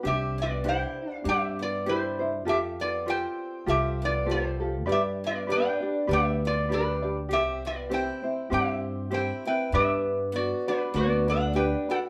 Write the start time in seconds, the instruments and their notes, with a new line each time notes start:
0.03 upright bass C2, steel-string acoustic guitar C4, ukulele D4 G4, resonator guitar played with a steel bar E5
0.08 resonator guitar played with a steel bar G4
0.38 steel-string acoustic guitar B3, resonator guitar played with a steel bar D5
0.43 resonator guitar played with a steel bar F4
0.64 ukulele D4 E4 G4 C5, steel-string acoustic guitar E4
0.69 resonator guitar played with a steel bar C5 G5
1.08 steel-string acoustic guitar D4
1.15 resonator guitar played with a steel bar F5
1.24 upright bass G2, steel-string acoustic guitar C4, ukulele D4 G4
1.29 resonator guitar played with a steel bar G4 E5
1.59 steel-string acoustic guitar B3, resonator guitar played with a steel bar D5
1.63 resonator guitar played with a steel bar F4
1.86 steel-string acoustic guitar G3, ukulele D4 E4 G4 C5, resonator guitar played with a steel bar E4 C5
2.19 ukulele D4 E4 C5
2.45 upright bass F2, steel-string acoustic guitar C4, ukulele F4 G4 A4
2.49 resonator guitar played with a steel bar G4 E5
2.80 steel-string acoustic guitar B3, resonator guitar played with a steel bar F4 D5
3.06 steel-string acoustic guitar C4, ukulele F4 G4 A4 C5, resonator guitar played with a steel bar C5 G5
3.66 upright bass C2, steel-string acoustic guitar C4, ukulele F4 G4 A4, resonator guitar played with a steel bar G4 E5
4.02 steel-string acoustic guitar B3, resonator guitar played with a steel bar F4 D5
4.25 ukulele F4 G4 A4 C5
4.30 steel-string acoustic guitar A3, resonator guitar played with a steel bar F4 C5
4.60 ukulele F4 G4 A4
4.86 upright bass G2, steel-string acoustic guitar B3, ukulele D4 G4 B4 D5
4.92 resonator guitar played with a steel bar G4 E5
5.24 steel-string acoustic guitar B3, resonator guitar played with a steel bar F4 D5
5.47 ukulele D4 G4 B4 D5, steel-string acoustic guitar D4
5.52 resonator guitar played with a steel bar B4 G5
5.80 ukulele D4 G4 D5
6.07 upright bass D2, steel-string acoustic guitar B3, ukulele D4 G4 B4 D5
6.13 resonator guitar played with a steel bar G4 E5
6.45 steel-string acoustic guitar B3, resonator guitar played with a steel bar F4 D5
6.69 steel-string acoustic guitar G3, ukulele D4 G4 B4 D5
6.73 resonator guitar played with a steel bar D4 B4
7.02 ukulele D4 G4 D5
7.29 upright bass C2, steel-string acoustic guitar C4, ukulele G4
7.33 resonator guitar played with a steel bar G4 E5
7.65 steel-string acoustic guitar B3, resonator guitar played with a steel bar F4 D5
7.90 ukulele C4 E4 G4 C5, steel-string acoustic guitar E4, resonator guitar played with a steel bar C5
7.94 resonator guitar played with a steel bar G5
8.23 ukulele C4 E4 C5
8.50 upright bass G2, ukulele C4 E4 G4 C5, steel-string acoustic guitar C4, resonator guitar played with a steel bar G4 E5
9.11 ukulele C4 E4 G4 C5, steel-string acoustic guitar E4, resonator guitar played with a steel bar G5
9.15 resonator guitar played with a steel bar C5
9.46 ukulele C4 E4, steel-string acoustic guitar E4, resonator guitar played with a steel bar B4 G5
9.72 upright bass G2, steel-string acoustic guitar B3, ukulele D4 B4, resonator guitar played with a steel bar G4 E5
10.32 steel-string acoustic guitar B3, resonator guitar played with a steel bar F#4 D5
10.68 steel-string acoustic guitar G3, resonator guitar played with a steel bar D4 B4, ukulele D4 F#4 B4
10.94 upright bass D2, steel-string acoustic guitar B3, ukulele D4 F#4 B4, resonator guitar played with a steel bar F#4 D5
11.27 steel-string acoustic guitar D4, ukulele D4 F#4 B4, resonator guitar played with a steel bar A4 F#5
11.53 steel-string acoustic guitar D4, ukulele D4 G4 B4, resonator guitar played with a steel bar B4 G5
11.89 steel-string acoustic guitar D4, ukulele D4 F#4 B4, resonator guitar played with a steel bar A4 F#5